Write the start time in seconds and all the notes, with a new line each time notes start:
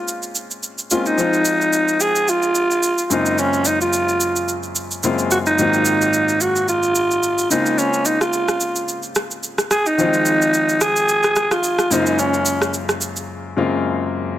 Already playing: G#3 A#3 C4 C#4 F4
0.08 shaker
0.23 shaker
0.35 shaker
0.51 shaker
0.63 shaker
0.78 shaker
0.91 G#3 A#3 C4 C#4 F4, shaker
1.06 D#4, shaker
1.17 F3 G#3 C4 D#4 F4, shaker
1.33 shaker
1.45 shaker
1.61 shaker
1.73 shaker
1.88 shaker
2.00 G#4, shaker
2.16 shaker
2.28 F4, shaker
2.42 shaker
2.55 shaker
2.71 shaker
2.83 shaker
2.98 shaker
3.05 F4
3.10 F#2 C#3 G#3 A#3 C4 D#4 F4, shaker
3.26 shaker
3.38 C#4, shaker
3.53 shaker
3.65 D#4, shaker
3.81 F4, shaker
3.93 shaker
4.08 shaker
4.21 shaker
4.36 shaker
4.48 shaker
4.63 shaker
4.75 shaker
4.91 shaker
5.03 F#2 C#3 G#3 A#3 C4 F4, shaker
5.19 shaker
5.31 F#4, shaker
5.46 D#4, shaker
5.58 G#2 D#3 F#3 A#3 C4 F4, shaker
5.73 shaker
5.85 shaker
6.01 shaker
6.13 shaker
6.29 shaker
6.41 F#4, shaker
6.56 shaker
6.68 F4, shaker
6.83 shaker
6.95 shaker
7.11 shaker
7.23 shaker
7.38 shaker
7.50 C#3 G#3 A#3 C4 D#4 F4, shaker
7.66 shaker
7.79 C#4, shaker
7.93 shaker
8.05 D#4, shaker
8.21 F4, cross-stick, shaker
8.33 shaker
8.48 cross-stick, shaker
8.60 shaker
8.76 shaker
8.88 shaker
9.03 shaker
9.15 cross-stick, shaker
9.31 shaker
9.43 shaker
9.58 cross-stick, shaker
9.71 G#4, cross-stick, shaker
9.86 D#4, shaker
9.98 D#3 F3 F#3 C4 F4, shaker
10.06 G#3
10.14 shaker
10.25 shaker
10.42 shaker
10.54 shaker
10.69 shaker
10.81 G#4, cross-stick, shaker
10.96 shaker
11.09 shaker
11.23 cross-stick, shaker
11.36 cross-stick, shaker
11.51 F4, cross-stick, shaker
11.63 shaker
11.79 cross-stick, shaker
11.90 F#2 C#3 G#3 A#3 D#4 F4 C5, shaker
12.06 shaker
12.19 C#4, shaker
12.34 shaker
12.46 shaker
12.62 cross-stick, shaker
12.74 shaker
12.89 cross-stick, shaker
13.01 shaker
13.16 shaker
13.57 F#2 C#3 G#3 A#3 C4 F4